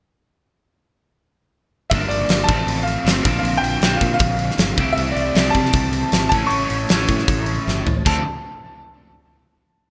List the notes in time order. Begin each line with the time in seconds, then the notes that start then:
1.90 G1 G2 D3 F3 G3 A#3 D4 E5, kick, open hi-hat
2.09 G1 D5, open hi-hat
2.29 G1, snare, open hi-hat
2.44 A2 A5
2.48 A1 F3 A3 C4 F4, kick, open hi-hat
2.67 A1, open hi-hat
2.83 F5
2.88 open hi-hat
3.04 G1 A2 F3 A3 C4 F4, snare, open hi-hat
3.24 A#1 A#2 D3 F3 A#3 C4 D4 F4, kick, open hi-hat
3.39 F5
3.43 A#1, open hi-hat
3.57 G5
3.62 A#1, open hi-hat
3.81 A#1 A#2 D3 F3 A#3 C4 D4 F4, snare, open hi-hat
3.96 F5
4.01 A#2, kick, open hi-hat
4.14 F5
4.19 A#1, kick, open hi-hat
4.39 open hi-hat
4.51 snare
4.58 G1, snare, open hi-hat
4.77 C2 C3 E3 G3 A3 C4 E4 G4, kick, open hi-hat
4.93 C5 E5 A5
4.97 C2 E4, open hi-hat
5.12 C2 D5
5.17 open hi-hat
5.34 C2 C3 E3 G3 A3 C4 E4, snare, open hi-hat
5.39 G4
5.50 A5
5.55 C3, kick, open hi-hat
5.65 snare
5.73 C2, kick, open hi-hat
5.93 open hi-hat
6.12 G#1, snare, open hi-hat
6.29 A1 A2 E3 C#5 A5, kick, open hi-hat
6.33 A3 C#4 E4
6.47 C#6, open hi-hat
6.51 A1
6.70 A1, open hi-hat
6.89 A1 A2 E3 A3 C#4 E4, snare, open hi-hat
7.08 A2, kick, open hi-hat
7.19 snare
7.28 A1, kick, open hi-hat
7.46 open hi-hat
7.67 G1, snare
7.86 A1, floor tom
8.05 D2 D3 F3 A3 C4 D4 F5 A5, kick, crash